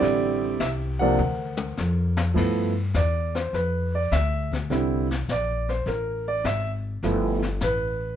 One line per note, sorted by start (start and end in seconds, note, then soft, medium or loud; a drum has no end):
0.00 0.59 A1 medium
0.00 0.57 D3 medium
0.00 0.57 G3 medium
0.00 0.57 C4 medium
0.00 0.58 E4 medium
0.00 1.15 G4 medium
0.00 0.61 D5 medium
0.00 brush sweep soft
0.00 kick soft
0.00 snare soft
0.60 1.17 C2 medium
0.60 0.69 E5 medium
0.60 kick soft
0.60 snare medium
0.60 hi-hat pedal medium
0.99 1.17 C3 medium
0.99 1.18 F3 medium
0.99 1.18 A#3 medium
0.99 1.18 D4 medium
0.99 2.13 A#4 medium
0.99 2.13 C5 medium
0.99 1.73 F#5 medium
1.18 1.76 D2 medium
1.18 mid tom soft
1.57 high tom medium
1.77 2.35 F2 medium
1.77 snare medium
1.77 hi-hat pedal soft
2.17 snare medium
2.34 2.93 G2 medium
2.34 2.71 F3 medium
2.34 2.71 A3 medium
2.34 2.72 B3 medium
2.34 2.72 E4 medium
2.34 brush sweep soft
2.34 kick medium
2.34 snare soft
2.34 crash medium
2.94 3.51 E2 medium
2.94 3.34 D5 medium
2.94 kick soft
2.94 snare medium
2.94 hi-hat pedal medium
3.35 3.53 C5 medium
3.35 snare medium
3.53 4.10 F2 medium
3.53 3.93 B4 medium
3.53 brush sweep soft
3.53 kick soft
3.53 snare soft
3.95 4.12 D5 medium
4.12 4.68 D2 medium
4.12 4.51 E5 medium
4.12 kick soft
4.12 snare medium
4.12 hi-hat pedal medium
4.52 kick medium
4.52 snare soft
4.70 5.27 C2 medium
4.70 5.06 D3 medium
4.70 5.06 G3 medium
4.70 5.06 C4 medium
4.70 5.07 E4 medium
4.70 brush sweep soft
4.70 kick soft
4.70 snare soft
5.11 snare medium
5.28 5.85 A#1 medium
5.28 5.69 D5 medium
5.28 kick soft
5.28 snare medium
5.28 hi-hat pedal medium
5.68 5.87 C5 medium
5.68 snare soft
5.86 6.43 A1 medium
5.86 6.26 A#4 medium
5.86 brush sweep soft
5.86 kick soft
5.86 snare soft
6.28 6.45 D5 medium
6.44 7.01 G#1 medium
6.44 6.70 E5 medium
6.44 kick soft
6.44 snare medium
6.44 hi-hat pedal medium
7.03 7.59 G1 medium
7.03 7.39 F3 medium
7.03 7.39 A3 medium
7.03 7.40 B3 medium
7.03 7.40 E4 medium
7.03 brush sweep soft
7.03 kick soft
7.03 snare soft
7.42 snare soft
7.61 8.16 A1 medium
7.61 8.16 B4 medium
7.61 kick soft
7.61 snare medium
7.61 hi-hat pedal medium